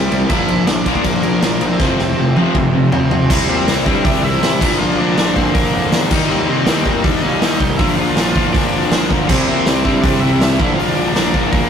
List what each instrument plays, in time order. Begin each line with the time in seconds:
Already playing: distorted electric guitar C3 G3 C4 E4, overdriven electric guitar G3 G4
0.11 picked electric bass C2, distorted electric guitar C3 G3, crash
0.29 picked electric bass A#1, distorted electric guitar A#2 F3 A#3 D4 F4, overdriven electric guitar E4 E5, kick, crash
0.48 picked electric bass A#1, distorted electric guitar A#2 F3, crash
0.67 picked electric bass A#1, distorted electric guitar A#2 F3, overdriven electric guitar D4 D5, snare, crash
0.85 distorted electric guitar A#2 F3 A#3 D4 F4, kick, crash
0.95 kick
1.04 picked electric bass A#1, distorted electric guitar A#2 F3, overdriven electric guitar A#3 A#4, kick, crash
1.23 picked electric bass A#1, distorted electric guitar A#2 F3, overdriven electric guitar A#3 A#4, crash
1.41 picked electric bass A#1, distorted electric guitar A#2 F3 A#3 D4 F4, snare, crash
1.61 picked electric bass A#1, distorted electric guitar A#2 F3, overdriven electric guitar C4 C5, crash
1.79 picked electric bass F1, distorted electric guitar F2 C3 F3 A3 C4 F4, kick, snare
1.99 picked electric bass F1, distorted electric guitar F2 C3, snare
2.17 picked electric bass F1, distorted electric guitar F2 C3
2.35 distorted electric guitar F2 C3 F3 A3 C4 F4, high tom
2.54 picked electric bass F1, distorted electric guitar F2 C3, overdriven electric guitar A#4, kick, mid tom
2.73 picked electric bass F1, distorted electric guitar F2 C3
2.90 picked electric bass F1, distorted electric guitar F2 C3 F3 A3 C4 F4, overdriven electric guitar C4 C5, floor tom
3.11 picked electric bass F1, distorted electric guitar F2 C3, floor tom
3.29 picked electric bass C2, distorted electric guitar C3 G3 C4 E4, overdriven electric guitar C4 C5, kick, crash
3.48 picked electric bass A#2, distorted electric guitar C3 G3 C4 E4, overdriven electric guitar C4 C5
3.67 picked electric bass C2, distorted electric guitar C3 G3 C4 E4, snare, open hi-hat
3.86 picked electric bass G2, distorted electric guitar C3 G3 C4 E4, kick
4.05 picked electric bass C2, distorted electric guitar C3 G3 C4 E4, overdriven electric guitar D4 D5, kick, open hi-hat
4.23 picked electric bass C2, distorted electric guitar C3 G3 C4 E4, overdriven electric guitar E4 E5
4.41 picked electric bass A1, distorted electric guitar C3 G3 C4 E4, snare, open hi-hat
4.60 picked electric bass A#1, distorted electric guitar A#2 D3 F3 A#3 D4, kick, crash
4.78 picked electric bass A#1, distorted electric guitar A#2 D3 F3 A#3 D4, overdriven electric guitar F4 F5
4.98 picked electric bass A#1, distorted electric guitar A#2 D3 F3 A#3 D4, overdriven electric guitar D4 D5
5.16 picked electric bass A#1, distorted electric guitar A#2 D3 F3 A#3 D4, snare, open hi-hat
5.36 picked electric bass A#1, distorted electric guitar A#2 D3 F3 A#3 D4, overdriven electric guitar C4 C5, kick
5.54 distorted electric guitar A#2 D3 F3 A#3 D4, picked electric bass A#2, overdriven electric guitar A#3 A#4, kick, open hi-hat
5.73 picked electric bass F2, distorted electric guitar A#2 D3 F3 A#3 D4
5.92 picked electric bass E2, distorted electric guitar A#2 D3 F3 A#3 D4, snare, open hi-hat
6.11 picked electric bass D#2, distorted electric guitar D#3 G3 A#3 D#4, kick, crash
6.29 picked electric bass D#2, distorted electric guitar D#3 G3 A#3 D#4, overdriven electric guitar C4 C5
6.48 picked electric bass C3, distorted electric guitar D#3 G3 A#3 D#4, overdriven electric guitar C4 C5
6.66 picked electric bass D#2, distorted electric guitar D#3 G3 A#3 D#4, snare, open hi-hat
6.85 picked electric bass A#2, distorted electric guitar D#3 G3 A#3 D#4, kick
7.04 picked electric bass D#2, distorted electric guitar D#3 G3 A#3 D#4, overdriven electric guitar D4 D5, kick, open hi-hat
7.22 picked electric bass D#2, distorted electric guitar D#3 G3 A#3 D#4, overdriven electric guitar D#4 D#5
7.41 picked electric bass D#2, distorted electric guitar D#3 G3 A#3 D#4, snare, open hi-hat
7.60 picked electric bass C2, distorted electric guitar D#3 G3 A#3 D#4, kick
7.77 picked electric bass A#1, distorted electric guitar A#2 D3 F3 A#3 F4, overdriven electric guitar E4 E5, kick, open hi-hat
7.96 picked electric bass A#1, distorted electric guitar A#2 D3 F3 A#3 F4, overdriven electric guitar F4 F5
8.16 picked electric bass A#1, distorted electric guitar A#2 D3 F3 A#3 F4, snare, open hi-hat
8.35 picked electric bass A#1, distorted electric guitar A#2 D3 F3 A#3 F4, kick
8.53 distorted electric guitar A#2 D3 F3 A#3 F4, picked electric bass A#2, overdriven electric guitar D4 D5, kick, open hi-hat
8.72 picked electric bass F2, distorted electric guitar A#2 D3 F3 A#3 F4
8.91 picked electric bass A#1, distorted electric guitar A#2 D3 F3 A#3 F4, snare, open hi-hat
9.10 picked electric bass D2, distorted electric guitar A#2 D3 F3 A#3 F4, kick
9.29 picked electric bass C2, distorted electric guitar C3 G3 C4 E4, overdriven electric guitar C4 C5, kick, crash
9.47 picked electric bass A#2, distorted electric guitar C3 G3 C4 E4, overdriven electric guitar C4 C5
9.66 picked electric bass C2, distorted electric guitar C3 G3 C4 E4, snare, open hi-hat
9.84 picked electric bass G2, distorted electric guitar C3 G3 C4 E4, kick
9.88 distorted electric guitar C3
10.02 picked electric bass C2, distorted electric guitar C3 G3 C4 E4, overdriven electric guitar D4 D5, kick, open hi-hat
10.20 picked electric bass C2, distorted electric guitar C3 G3 C4 E4, overdriven electric guitar E4 E5
10.41 picked electric bass C2, distorted electric guitar C3 G3 C4 E4, snare, open hi-hat
10.59 picked electric bass A#1, distorted electric guitar A#2 D3 F3 A#3 D4, kick
10.76 picked electric bass A#1, distorted electric guitar A#2 D3 F3 A#3, overdriven electric guitar F4 F5, open hi-hat
10.81 distorted electric guitar D4
10.96 picked electric bass A#1, distorted electric guitar A#2 D3 F3 A#3 D4, overdriven electric guitar D4 D5
11.15 picked electric bass A#1, distorted electric guitar A#2 D3 F3 A#3 D4, snare, open hi-hat
11.34 picked electric bass A#1, distorted electric guitar A#2 D3 F3 A#3 D4, kick
11.51 distorted electric guitar A#2 D3 F3 A#3 D4, picked electric bass A#2, overdriven electric guitar A#3 A#4, kick, open hi-hat